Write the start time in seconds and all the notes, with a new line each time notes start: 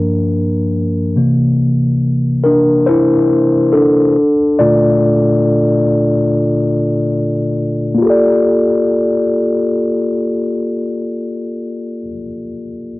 Already playing: G2 F3 A#3
1.16 C3 E3 A#3
2.44 D4 A#4
2.87 E4 C5
3.73 D4 A4
4.59 A#2 D3 A3 F4 D5
7.95 A#3 F4
8.02 G4 A4
8.10 D5